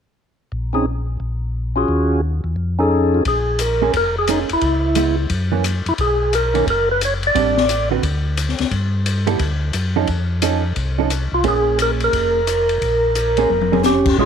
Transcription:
0.52 1.17 A#1 medium
0.73 0.85 C4 medium
0.73 0.86 C#4 soft
0.73 0.86 D#4 soft
0.73 0.86 G#4 medium
1.20 1.85 A#1 medium
1.76 2.20 C#4 medium
1.76 2.21 F4 soft
1.76 2.21 F#4 soft
1.76 2.21 G#4 medium
1.88 2.41 D#2 medium
2.44 2.56 E2 medium
2.56 3.22 F2 medium
2.79 3.23 C#4 medium
2.79 3.23 D#4 medium
2.79 3.24 G#4 medium
2.79 3.24 A4 medium
3.14 3.20 F4 medium
3.25 3.90 A#1 medium
3.25 3.62 G#4 medium
3.25 kick soft
3.25 ride soft
3.59 3.92 A#4 medium
3.59 hi-hat pedal medium
3.59 ride medium
3.82 3.93 A#3 soft
3.82 3.93 C#4 medium
3.82 3.93 G#4 medium
3.82 3.93 C5 medium
3.93 4.46 F1 medium
3.93 4.16 A#4 medium
3.93 kick soft
3.93 ride medium
4.19 4.30 G#4 medium
4.27 4.48 A#3 soft
4.27 4.48 C#4 medium
4.27 4.40 D#4 medium
4.27 4.48 G#4 medium
4.27 4.49 C5 medium
4.27 hi-hat pedal soft
4.27 ride medium
4.49 4.56 F1 soft
4.49 5.16 E4 medium
4.49 ride soft
4.61 5.27 C#2 medium
4.61 kick soft
4.61 ride soft
4.95 5.16 G#3 medium
4.95 5.16 B3 medium
4.95 5.16 E4 medium
4.95 hi-hat pedal medium
4.95 ride medium
5.30 5.82 F#2 medium
5.30 kick soft
5.30 ride medium
5.52 5.63 E3 medium
5.52 5.63 A#3 medium
5.52 5.64 C#4 medium
5.64 hi-hat pedal soft
5.64 ride medium
5.86 5.92 F#2 soft
5.86 5.94 E4 medium
5.86 ride soft
5.98 6.63 B1 medium
5.98 6.35 G#4 medium
5.98 kick soft
5.98 ride soft
6.33 6.66 A#4 medium
6.33 hi-hat pedal medium
6.33 ride medium
6.54 6.65 D#3 medium
6.54 6.66 A#3 soft
6.54 6.66 C#4 medium
6.54 ride soft
6.67 7.32 F#1 medium
6.67 6.89 A#4 medium
6.67 kick soft
6.67 ride soft
6.91 7.02 B4 medium
7.01 7.14 C#5 medium
7.01 hi-hat pedal medium
7.01 ride medium
7.23 ride soft
7.27 7.89 D5 medium
7.35 8.00 A1 medium
7.35 7.55 G3 medium
7.35 7.55 C4 medium
7.35 7.55 D4 medium
7.35 kick soft
7.35 ride soft
7.57 snare soft
7.69 hi-hat pedal medium
7.69 ride medium
7.91 8.02 D3 soft
7.91 8.02 C4 soft
7.91 8.02 F#4 medium
7.91 8.03 B4 medium
8.03 8.55 D2 medium
8.03 kick soft
8.03 ride soft
8.37 hi-hat pedal soft
8.37 ride medium
8.49 snare soft
8.59 8.66 D2 soft
8.59 snare soft
8.59 ride soft
8.71 9.36 G2 medium
8.71 kick soft
8.71 ride soft
9.06 hi-hat pedal soft
9.06 ride medium
9.27 9.38 G3 medium
9.27 9.38 B3 medium
9.27 9.39 E4 medium
9.27 9.39 A4 medium
9.27 ride soft
9.39 9.71 D2 medium
9.39 kick soft
9.39 ride medium
9.73 10.06 F#2 medium
9.73 hi-hat pedal soft
9.73 ride medium
9.96 10.07 F3 medium
9.96 10.07 C#4 medium
9.96 10.07 D#4 medium
9.96 10.07 A4 medium
10.07 10.73 F2 medium
10.07 kick soft
10.07 ride soft
10.42 10.62 F3 medium
10.42 10.62 C#4 medium
10.42 10.62 D#4 medium
10.42 10.62 A4 medium
10.42 hi-hat pedal medium
10.42 ride medium
10.76 11.28 C2 medium
10.76 kick soft
10.76 ride soft
10.98 11.10 F3 medium
10.98 11.10 C#4 medium
10.98 11.10 D#4 medium
10.98 11.10 A4 medium
11.10 hi-hat pedal soft
11.10 ride medium
11.32 11.44 C2 medium
11.32 11.45 F4 medium
11.44 12.09 A#1 medium
11.44 12.40 A#3 medium
11.44 12.40 C#4 medium
11.44 12.40 G#4 medium
11.44 12.40 C5 medium
11.44 kick soft
11.44 ride soft
11.48 11.78 G#4 medium
11.79 11.91 A#4 medium
11.79 hi-hat pedal soft
11.79 ride medium
12.00 13.82 A#4 medium
12.00 ride soft
12.13 12.78 F1 medium
12.13 kick soft
12.13 ride soft
12.47 hi-hat pedal medium
12.47 ride medium
12.69 ride soft
12.82 13.47 A#1 medium
12.82 kick soft
12.82 ride soft
13.15 hi-hat pedal soft
13.15 ride medium
13.37 13.49 A#3 medium
13.37 13.49 C#4 medium
13.37 13.49 G#4 medium
13.37 13.50 C5 medium
13.37 ride soft
13.50 14.15 F1 medium
13.50 high tom soft
13.61 high tom soft
13.72 13.83 A#3 soft
13.72 13.83 C#4 medium
13.72 13.84 G#4 medium
13.72 13.84 C5 medium
13.72 high tom medium
13.83 14.17 C#4 medium
13.83 14.17 G4 medium
13.83 snare soft
13.83 hi-hat pedal soft
14.06 kick medium
14.06 crash medium
14.18 14.25 A#1 medium
14.18 14.25 G#3 medium
14.18 14.25 C#4 medium
14.18 14.25 F4 medium
14.18 14.25 G#4 medium
14.18 kick soft

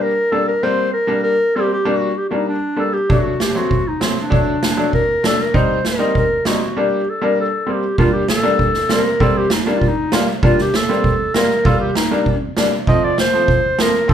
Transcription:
0.00 0.11 G3 medium
0.00 0.10 A#3 medium
0.00 0.11 D4 medium
0.00 0.34 A#4 loud
0.32 0.48 G3 medium
0.32 0.48 A#3 medium
0.32 0.48 D4 medium
0.32 0.48 A4 medium
0.48 0.64 A#4 medium
0.63 0.86 G3 medium
0.63 0.86 A#3 medium
0.63 0.86 C4 medium
0.63 0.93 C5 medium
0.93 1.22 A#4 medium
1.07 1.31 G3 medium
1.07 1.32 A#3 medium
1.07 1.32 D4 medium
1.23 1.57 A#4 loud
1.56 1.71 G3 medium
1.56 1.71 A#3 medium
1.56 1.71 C4 medium
1.56 1.71 G4 medium
1.73 1.89 G4 medium
1.85 2.09 G3 medium
1.85 2.09 A#3 medium
1.85 2.09 D4 medium
1.85 2.19 F#4 medium
2.17 2.28 G4 medium
2.29 2.55 G3 medium
2.29 2.54 A#3 medium
2.29 2.55 D4 medium
2.29 2.48 D#4 medium
2.29 2.34 F#4 soft
2.49 2.81 D4 medium
2.76 2.93 G3 medium
2.76 2.93 A#3 medium
2.76 2.93 D4 medium
2.76 2.95 A4 medium
2.93 3.13 G4 medium
3.09 3.32 F#3 medium
3.09 3.33 A3 medium
3.09 3.32 D4 medium
3.09 3.43 F#4 medium
3.09 kick medium
3.40 3.58 G4 medium
3.40 snare medium
3.55 3.78 F#3 medium
3.55 3.78 A3 medium
3.55 3.78 C4 medium
3.55 3.89 F#4 medium
3.71 kick medium
3.88 4.02 D#4 medium
4.00 4.16 F#3 medium
4.00 4.16 A3 medium
4.00 4.16 C4 medium
4.00 snare medium
4.18 4.90 D4 medium
4.30 4.54 F#3 medium
4.30 4.54 A3 medium
4.30 4.54 D4 medium
4.30 kick medium
4.63 snare medium
4.77 5.00 F#3 medium
4.77 5.00 A3 medium
4.77 5.00 D4 medium
4.93 5.22 A#4 medium
4.93 kick medium
5.24 5.39 F#3 medium
5.24 5.39 A3 medium
5.24 5.39 D4 medium
5.24 5.44 A4 medium
5.24 snare medium
5.42 5.57 A#4 medium
5.54 5.77 G3 medium
5.54 5.77 C4 medium
5.54 5.77 D#4 medium
5.54 5.89 C5 medium
5.54 kick medium
5.85 6.17 A#4 medium
5.85 snare medium
5.99 6.22 G3 medium
5.99 6.23 C4 medium
5.99 6.22 D#4 medium
6.15 6.48 A#4 medium
6.15 kick medium
6.45 6.61 G3 medium
6.45 6.61 C4 medium
6.45 6.62 D#4 medium
6.45 6.60 F#4 medium
6.45 snare medium
6.61 6.80 F#4 medium
6.77 6.99 G3 medium
6.77 6.99 A#3 medium
6.77 7.00 D4 medium
6.77 7.11 G4 medium
7.10 7.26 A4 medium
7.22 7.45 G3 medium
7.22 7.45 A#3 medium
7.22 7.45 D4 medium
7.22 7.39 A#4 medium
7.41 7.73 A4 medium
7.67 7.82 G3 medium
7.67 7.83 A#3 medium
7.67 7.82 C4 medium
7.72 7.98 G4 medium
7.98 8.21 G3 medium
7.98 8.21 A#3 medium
7.98 8.22 D4 medium
7.98 8.14 F4 medium
7.98 kick medium
8.12 8.28 G4 medium
8.28 8.93 A4 medium
8.28 snare medium
8.43 8.67 G3 medium
8.43 8.67 A#3 medium
8.43 8.67 D4 medium
8.59 kick medium
8.74 snare soft
8.89 9.06 G3 medium
8.89 9.06 A#3 medium
8.89 9.06 C4 medium
8.89 9.22 A#4 medium
8.89 snare medium
9.20 9.43 G3 medium
9.20 9.44 A#3 medium
9.20 9.44 C4 medium
9.20 9.39 A4 medium
9.20 kick medium
9.37 9.54 G4 medium
9.50 9.65 D#4 medium
9.50 snare medium
9.63 9.89 G3 medium
9.63 9.89 A#3 medium
9.63 9.89 D4 medium
9.63 9.72 F4 medium
9.70 9.79 D#4 medium
9.77 9.89 F4 medium
9.81 kick medium
9.88 10.15 D#4 medium
10.12 10.28 G3 medium
10.12 10.28 A#3 medium
10.12 10.28 F4 medium
10.12 snare loud
10.43 10.66 G3 medium
10.43 10.66 A#3 medium
10.43 10.66 D4 medium
10.43 10.63 F4 medium
10.43 kick medium
10.59 10.77 G4 medium
10.59 snare soft
10.74 11.36 A4 medium
10.74 snare medium
10.89 11.12 G3 medium
10.89 11.12 A#3 medium
10.89 11.12 C4 medium
11.04 kick medium
11.34 11.50 G3 medium
11.34 11.51 A#3 medium
11.34 11.50 F4 medium
11.34 11.67 A#4 medium
11.34 snare medium
11.65 11.88 G3 medium
11.65 11.88 A#3 medium
11.65 11.88 F4 medium
11.65 11.80 A4 medium
11.65 kick medium
11.80 11.94 G4 medium
11.95 12.53 D#4 medium
11.95 snare medium
12.11 12.34 G3 medium
12.11 12.34 A#3 medium
12.11 12.34 D4 medium
12.26 kick medium
12.57 12.72 G3 medium
12.57 12.72 A#3 medium
12.57 12.72 D4 medium
12.57 snare medium
12.87 13.10 F3 medium
12.87 13.11 A3 medium
12.87 13.11 C4 medium
12.87 13.05 D#5 medium
12.87 kick medium
13.04 13.18 D5 medium
13.18 13.82 C5 medium
13.18 snare medium
13.33 13.56 F3 medium
13.33 13.56 A3 medium
13.33 13.56 C4 medium
13.48 kick medium
13.78 13.94 F3 medium
13.78 13.94 A3 medium
13.78 13.94 C4 medium
13.78 14.11 A#4 medium
13.78 snare medium
14.08 14.14 F3 medium
14.08 14.14 A3 medium
14.08 14.14 C4 medium
14.08 14.14 A4 medium
14.08 kick medium

